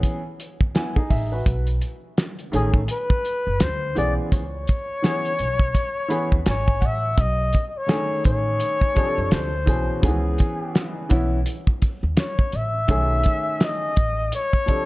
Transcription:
Already playing: E3 B3 C#4 G#4
0.03 kick, closed hi-hat
0.40 closed hi-hat
0.61 D#2, kick
0.75 B3 E4 G#5, snare, closed hi-hat
0.96 D#4 G#4, kick
1.10 A1 E5, kick, open hi-hat
1.32 F#4 B4
1.46 B1, kick, closed hi-hat
1.67 closed hi-hat
1.81 closed hi-hat
2.18 snare, closed hi-hat
2.39 closed hi-hat
2.52 A1 D#3 A3 C#4 G#4, closed hi-hat
2.56 G#4
2.74 kick
2.88 B4, closed hi-hat
3.10 kick
3.25 closed hi-hat
3.47 F#1
3.60 D2 C5, snare, closed hi-hat
3.95 B1 C#3 E3 B3 G#4 D5, closed hi-hat
4.32 C#2 C#5, kick, closed hi-hat
4.67 kick, closed hi-hat
5.02 E3 B3 C#4 G#4, snare, closed hi-hat
5.25 closed hi-hat
5.39 B1, closed hi-hat
5.59 kick
5.74 kick, closed hi-hat
6.08 E3 B3 C#4 G#4 B5, closed hi-hat
6.32 D#2, kick
6.46 G#1 C#5 G#5, snare, closed hi-hat
6.66 G#5, kick
6.81 A1 F#5, kick, closed hi-hat
6.86 E5
7.18 B1 D#5, kick, closed hi-hat
7.53 kick, closed hi-hat
7.68 D#5
7.77 C#5
7.87 D3 A3 C#4 G#4, snare, closed hi-hat
7.93 D#3
8.24 A1 C#5, kick, closed hi-hat
8.60 closed hi-hat
8.81 kick
8.95 C3 F3 D4 G#4, kick, closed hi-hat
9.04 A4
9.18 F#1
9.31 D2 C5, snare, closed hi-hat
9.66 B1 B2 E3 C#4 G#4, kick, closed hi-hat
10.01 C#2 D#3 B3 C#4 G#4, kick, closed hi-hat
10.08 E3
10.38 kick, closed hi-hat
10.75 snare, closed hi-hat
11.09 B1 E3 B3 C#4 E4, kick, closed hi-hat
11.46 closed hi-hat
11.67 kick
11.82 kick, closed hi-hat
12.03 D#2
12.17 C#5, snare, closed hi-hat
12.39 kick
12.52 A1 E5, closed hi-hat
12.88 B1 D#3 A3 C#4 G#4, kick, closed hi-hat
13.23 kick, closed hi-hat
13.60 D#5, snare, closed hi-hat
13.96 A1, kick, closed hi-hat
14.32 C#5, closed hi-hat
14.53 kick
14.66 C3 F3 D4 A4, kick, closed hi-hat

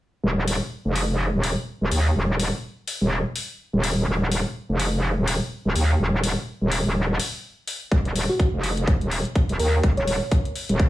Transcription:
0.23 D#1
0.48 open hi-hat
0.85 F1
0.96 open hi-hat
1.33 D#1
1.44 open hi-hat
1.81 D#1
1.91 D#2, open hi-hat
2.16 D#1
2.40 open hi-hat
2.88 open hi-hat
3.01 D#1
3.36 open hi-hat
3.73 D#1
3.84 open hi-hat
4.07 D#1
4.32 open hi-hat
4.69 F1
4.80 open hi-hat
5.17 D#1
5.28 open hi-hat
5.65 D#1
5.76 D#2, open hi-hat
6.00 D#1
6.24 open hi-hat
6.61 D#1
6.72 open hi-hat
6.85 D#1
7.20 open hi-hat
7.68 open hi-hat
7.92 D#1, kick, closed hi-hat
8.05 closed hi-hat
8.16 open hi-hat
8.29 F#4
8.40 F#4, kick, closed hi-hat
8.53 F1
8.63 open hi-hat
8.77 closed hi-hat
8.87 kick, closed hi-hat
9.01 D#1, closed hi-hat
9.11 open hi-hat
9.25 closed hi-hat
9.35 kick, closed hi-hat
9.49 D#1, closed hi-hat
9.59 D#2 A#4, open hi-hat
9.83 D#1, kick, closed hi-hat
9.97 C#5, closed hi-hat
10.07 open hi-hat
10.31 kick, closed hi-hat
10.45 closed hi-hat
10.56 open hi-hat
10.69 D#1, closed hi-hat
10.80 kick, closed hi-hat

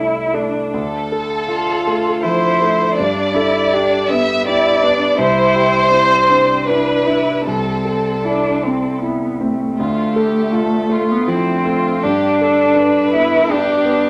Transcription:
Already playing: C2 A3 E4 A4
0.34 A3 D4
0.74 D2 A4
1.12 A4
1.47 F4
1.87 A3
2.23 F3 E4 C5
2.62 A3
2.98 G2 D4 D5
3.35 E4 A4
3.73 D4 G4
4.10 B3 E5
4.46 E4 G4 D5
4.83 B3 D4
5.18 C2 E4 C5
5.55 G4
5.90 C4 E4
6.30 D4
6.67 D4 E4 B4
7.06 D4 E4
7.45 C2 C4 A4
7.85 A4
8.24 D4 E4
8.63 C4
8.99 B3 E4
9.40 A3 C4
9.77 D2 A3 F4
10.16 G4 A4
10.52 F4 A4
10.90 A3 F4
11.11 B3
11.28 F3 C4 E4
11.65 A3 F4
12.03 G2 D4 G4
12.40 A4
12.76 D4 B4
13.15 B3 E4
13.49 D4 G4
13.85 B3

